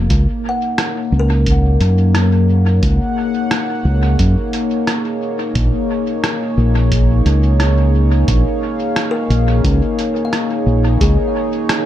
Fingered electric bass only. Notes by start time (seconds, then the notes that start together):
0.10 C#2
1.12 C#2
1.80 F#2
2.83 C#2
3.85 C#2
4.19 F#2
5.55 A#1
6.57 A#1
7.26 C#2
8.28 A#1
9.30 A#1
9.64 C#2
10.66 A#1
11.01 C#2